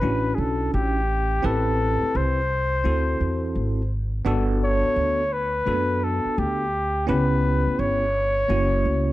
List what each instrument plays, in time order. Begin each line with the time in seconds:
Already playing: flugelhorn B4
0.02 upright bass A1, tine electric piano C#4 D4 E4 F#4
0.35 upright bass B1, flugelhorn G#4
0.39 flugelhorn A4
0.74 upright bass A1, flugelhorn G4
1.42 upright bass A1, tine electric piano C4 E4 G4 B4, flugelhorn A4
2.02 muted upright bass stroke
2.15 upright bass C2, flugelhorn C5
2.84 upright bass D2, tine electric piano C4 E4 F#4 A4
3.21 upright bass E2
3.55 upright bass G#1
4.25 upright bass G1, tine electric piano B3 D4 F#4 A4
4.64 flugelhorn C#5
4.84 muted upright bass stroke
4.96 upright bass D2
5.33 flugelhorn B4
5.66 upright bass F#2, tine electric piano A3 D4 F#4 A4
5.72 tine electric piano B3
6.04 flugelhorn A4
6.25 muted upright bass stroke
6.38 upright bass D2, flugelhorn G4
7.07 upright bass C#2, tine electric piano B3 C#4 E4 G4, flugelhorn B4
7.67 muted upright bass stroke
7.79 upright bass G1, flugelhorn C#5
8.48 upright bass F#1, tine electric piano A#3 C#4 E4 F#4
8.85 upright bass C#2